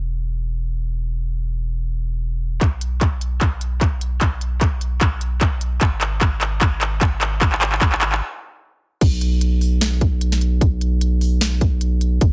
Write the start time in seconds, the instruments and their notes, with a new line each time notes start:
Already playing: sub bass E1
2.61 sub bass B1, kick, clap, closed hi-hat
2.81 closed hi-hat
3.01 kick, clap, closed hi-hat
3.21 closed hi-hat
3.41 kick, clap, closed hi-hat
3.61 closed hi-hat
3.81 kick, clap, closed hi-hat
4.01 closed hi-hat
4.21 kick, clap, closed hi-hat
4.41 closed hi-hat
4.61 kick, clap, closed hi-hat
4.81 closed hi-hat
5.01 kick, clap, closed hi-hat
5.21 closed hi-hat
5.41 kick, clap, closed hi-hat
5.61 closed hi-hat
5.81 sub bass G#1, kick, clap, closed hi-hat
6.01 clap, closed hi-hat
6.21 kick, clap, closed hi-hat
6.41 clap, closed hi-hat
6.61 kick, clap, closed hi-hat
6.81 clap, closed hi-hat
7.01 kick, clap, closed hi-hat
7.21 clap, closed hi-hat
7.41 kick, clap, closed hi-hat
7.52 clap
7.61 clap, closed hi-hat
7.72 clap
7.81 kick, clap, closed hi-hat
7.92 clap
8.01 clap, closed hi-hat
8.12 clap
9.01 sub bass B1, kick, closed hi-hat, crash
9.21 closed hi-hat
9.41 closed hi-hat
9.61 open hi-hat
9.81 snare, closed hi-hat
10.01 kick, closed hi-hat
10.21 closed hi-hat
10.32 snare
10.41 closed hi-hat
10.61 kick, closed hi-hat
10.81 closed hi-hat
11.01 closed hi-hat
11.21 open hi-hat
11.41 snare, closed hi-hat
11.61 kick, closed hi-hat
11.81 closed hi-hat
12.01 closed hi-hat
12.21 sub bass G#1, kick, closed hi-hat